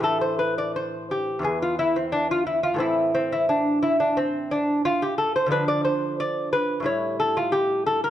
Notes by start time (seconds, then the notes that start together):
0.00 A2 E3 A3 A4
0.21 C5
0.39 B4
0.58 D5
0.76 C5
1.11 G4
1.39 E2 E3 B3
1.44 G#4
1.62 F4
1.79 E4
1.96 C4
2.12 D4
2.31 F4
2.47 E4
2.63 F4
2.74 A2 E3
2.78 C4 E4
3.15 C4
3.32 E4
3.49 D4
3.83 E4
4.00 D4
4.17 C4
4.51 D4
4.85 F4
5.02 G4
5.18 A4
5.36 C5
5.46 D3 F3
5.51 D4 B4
5.68 D5
5.85 C5
6.20 D5
6.53 B4
6.80 A2 G3
6.84 E4 C#5
7.20 A4
7.37 F4
7.52 G4
7.86 A4
8.04 A#4